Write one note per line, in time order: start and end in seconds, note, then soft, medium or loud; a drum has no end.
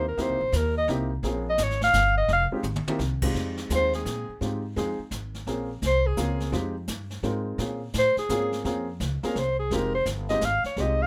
0.00 0.17 D#2 loud
0.08 0.23 A#4 medium
0.17 0.29 E2 medium
0.17 0.38 A#3 medium
0.17 0.38 C4 medium
0.17 0.38 D#4 medium
0.17 0.39 E4 medium
0.17 0.39 G4 medium
0.17 brush sweep medium
0.17 kick soft
0.17 snare medium
0.21 0.58 C5 loud
0.29 0.40 C2 medium
0.41 0.52 A#1 medium
0.52 0.87 D#2 loud
0.52 0.77 A#4 medium
0.52 kick soft
0.52 snare medium
0.52 hi-hat pedal medium
0.78 0.89 D#5 medium
0.88 1.22 C2 loud
0.88 1.09 A#3 medium
0.88 1.09 C4 medium
0.88 1.09 D#4 medium
0.88 1.09 E4 medium
0.88 1.09 G4 medium
0.88 kick soft
0.88 snare soft
1.23 1.58 A#1 medium
1.23 1.44 A#3 medium
1.23 1.44 C4 medium
1.23 1.45 C#4 medium
1.23 1.45 F4 medium
1.23 1.45 G#4 medium
1.23 brush sweep soft
1.23 kick soft
1.23 snare medium
1.49 1.65 D#5 medium
1.58 1.93 G#1 loud
1.58 kick soft
1.58 snare medium
1.58 hi-hat pedal medium
1.63 1.83 C#5 medium
1.70 snare soft
1.81 2.16 F5 loud
1.81 snare medium
1.93 2.28 G1 medium
1.93 kick soft
1.93 snare medium
1.93 hi-hat pedal medium
2.17 2.29 D#5 medium
2.28 2.50 F1 loud
2.28 brush sweep medium
2.28 kick soft
2.28 snare medium
2.33 2.46 F5 loud
2.52 2.64 G#3 medium
2.52 2.64 C4 medium
2.52 2.64 D#4 medium
2.52 2.64 F4 medium
2.52 2.64 G4 medium
2.52 muted upright bass stroke soft
2.63 2.85 G#1 loud
2.63 hi-hat pedal medium
2.63 mid tom medium
2.76 mid tom medium
2.87 2.99 A#3 medium
2.87 2.99 C4 medium
2.87 2.99 D#4 medium
2.87 3.00 E4 medium
2.87 3.00 G4 medium
2.87 muted upright bass stroke soft
2.87 mid tom loud
2.99 3.34 C2 loud
2.99 snare medium
3.22 3.69 G#3 medium
3.22 3.69 C4 medium
3.22 3.69 D#4 medium
3.22 3.69 F4 medium
3.22 3.69 G4 medium
3.22 kick medium
3.22 crash medium
3.34 3.69 F2 medium
3.34 brush sweep medium
3.34 kick soft
3.34 snare medium
3.57 snare medium
3.70 4.05 D#2 medium
3.70 4.24 G#3 medium
3.70 4.24 C4 medium
3.70 4.25 D#4 medium
3.70 4.25 F4 medium
3.70 4.25 G5 medium
3.70 kick soft
3.70 snare medium
3.70 hi-hat pedal medium
3.75 3.94 C5 loud
3.93 4.39 G#4 medium
3.93 snare soft
4.05 4.27 A#2 medium
4.05 kick soft
4.05 snare medium
4.05 hi-hat pedal medium
4.29 muted upright bass stroke soft
4.41 4.76 G#2 medium
4.41 4.62 G#3 medium
4.41 4.62 C4 medium
4.41 4.62 D#4 medium
4.41 4.62 F4 medium
4.41 4.62 G4 medium
4.41 brush sweep medium
4.41 kick soft
4.41 snare soft
4.76 4.98 F2 medium
4.76 4.97 G#3 medium
4.76 4.97 C4 medium
4.76 4.98 D#4 medium
4.76 4.98 F4 medium
4.76 4.98 G#4 medium
4.76 kick soft
4.76 snare medium
4.99 muted upright bass stroke soft
5.11 5.46 G#1 medium
5.11 kick soft
5.11 snare medium
5.11 hi-hat pedal medium
5.34 snare soft
5.46 5.81 A#1 medium
5.46 5.68 A#3 medium
5.46 5.68 C4 medium
5.46 5.68 C#4 medium
5.46 5.68 F4 medium
5.46 5.69 G#4 medium
5.46 brush sweep medium
5.46 kick soft
5.46 snare medium
5.82 6.17 C2 loud
5.82 kick soft
5.82 snare medium
5.82 hi-hat pedal medium
5.87 6.08 C5 loud
6.06 6.54 G#4 medium
6.17 6.52 C#2 medium
6.17 6.53 A#3 medium
6.17 6.51 C4 medium
6.17 6.53 C#4 medium
6.17 6.51 F4 medium
6.17 6.54 G#4 medium
6.17 kick soft
6.17 snare medium
6.17 hi-hat pedal medium
6.40 snare soft
6.52 6.87 F2 medium
6.52 6.73 G#3 medium
6.52 6.74 C4 medium
6.52 6.74 D#4 medium
6.52 6.74 F4 medium
6.52 6.74 G4 medium
6.52 brush sweep medium
6.52 kick soft
6.52 snare medium
6.88 7.22 G2 medium
6.88 kick soft
6.88 snare medium
6.88 hi-hat pedal medium
7.10 snare soft
7.23 7.58 G#2 medium
7.23 7.59 G#3 medium
7.23 7.57 C4 medium
7.23 7.60 D#4 medium
7.23 7.58 F4 medium
7.23 7.60 A#4 medium
7.23 kick soft
7.23 snare soft
7.58 7.93 A#2 medium
7.58 7.80 A#3 medium
7.58 7.80 C4 medium
7.58 7.80 C#4 medium
7.58 7.80 F4 medium
7.58 7.80 G#4 medium
7.58 brush sweep medium
7.58 kick soft
7.58 snare medium
7.93 8.15 A2 medium
7.93 kick soft
7.93 snare medium
7.93 hi-hat pedal medium
7.99 8.18 C5 loud
8.16 8.63 G#4 medium
8.16 muted upright bass stroke soft
8.16 snare soft
8.29 8.64 G#2 medium
8.29 8.64 A#3 medium
8.29 8.64 C4 medium
8.29 8.64 C#4 medium
8.29 8.65 F4 medium
8.29 8.65 G#4 medium
8.29 kick soft
8.29 snare medium
8.29 hi-hat pedal medium
8.52 snare soft
8.65 8.99 F2 medium
8.65 8.86 A#3 medium
8.65 8.86 C4 medium
8.65 8.86 C#4 medium
8.65 8.86 F4 medium
8.65 8.86 G#4 medium
8.65 brush sweep medium
8.65 kick soft
8.65 snare medium
9.00 9.22 C#2 loud
9.00 kick soft
9.00 snare medium
9.00 hi-hat pedal medium
9.23 9.35 A#3 medium
9.23 9.35 C4 medium
9.23 9.35 C#4 medium
9.23 9.35 F4 medium
9.23 9.35 G#4 medium
9.23 9.40 A#4 medium
9.23 muted upright bass stroke soft
9.23 snare soft
9.35 9.70 C2 medium
9.35 9.59 C5 loud
9.35 kick soft
9.35 snare soft
9.59 9.76 G#4 medium
9.71 10.05 F1 medium
9.71 9.92 G#3 medium
9.71 9.92 C4 medium
9.71 9.92 D#4 medium
9.71 9.93 F4 medium
9.71 9.93 G4 medium
9.71 9.94 A#4 medium
9.71 brush sweep medium
9.71 kick soft
9.71 snare medium
9.95 10.06 C5 medium
10.06 10.41 G1 loud
10.06 kick soft
10.06 snare medium
10.06 hi-hat pedal medium
10.29 10.41 G#3 medium
10.29 10.42 C4 medium
10.29 10.42 D#4 medium
10.29 10.42 F4 medium
10.29 10.42 G4 medium
10.29 10.46 D#5 medium
10.29 snare soft
10.41 10.63 G#1 medium
10.41 10.65 F5 loud
10.41 kick soft
10.41 snare medium
10.41 hi-hat pedal medium
10.64 10.82 C#5 medium
10.64 muted upright bass stroke soft
10.64 snare soft
10.76 11.07 C2 medium
10.76 11.07 G#3 medium
10.76 11.07 C4 medium
10.76 11.07 D#4 medium
10.76 11.07 F4 medium
10.76 11.07 G4 medium
10.76 brush sweep medium
10.76 kick soft
10.76 snare soft
10.81 11.04 D#5 medium
11.02 11.07 F5 loud